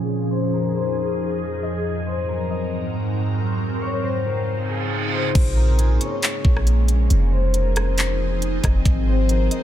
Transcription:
Already playing: F3 G#4 A#4 C#5
0.09 F2 D#4 G#4
0.31 C5
0.54 A#4
0.76 C5
1.63 D#5
1.85 G#2 F#3 C4 A#4
2.07 C5
2.29 A#4
2.50 D#5
3.60 C#3 D#4 F4
3.82 C#5
4.03 C5
4.26 A#4
4.48 reverse cymbal
4.69 G#4
5.13 C5
5.35 A#1 G#3 A#3 C#4, kick, closed hi-hat, crash
5.57 A#4
5.79 G#4, closed hi-hat
6.00 C#5, closed hi-hat
6.22 clap, closed hi-hat
6.45 A#1, kick
6.57 cross-stick
6.67 closed hi-hat
6.88 closed hi-hat
7.10 F1 F3 C4 D#4 G#4, closed hi-hat
7.32 C5
7.54 A#4, closed hi-hat
7.76 C5, cross-stick, closed hi-hat
7.98 clap, closed hi-hat
8.42 closed hi-hat
8.64 F1 D#5, kick, cross-stick, closed hi-hat
8.85 G#1 G#3 F#4, kick, closed hi-hat
9.07 C5
9.29 A#4, closed hi-hat
9.51 D#5, closed hi-hat

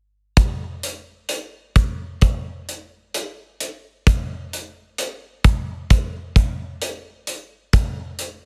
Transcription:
0.37 kick, closed hi-hat
0.83 closed hi-hat
1.29 closed hi-hat
1.76 kick, closed hi-hat
2.21 kick, closed hi-hat
2.69 closed hi-hat
3.14 closed hi-hat
3.60 closed hi-hat
4.07 kick, closed hi-hat
4.53 closed hi-hat
4.98 closed hi-hat
5.44 kick, closed hi-hat
5.90 kick, closed hi-hat
6.36 kick, closed hi-hat
6.82 closed hi-hat
7.27 closed hi-hat
7.73 kick, closed hi-hat
8.19 closed hi-hat

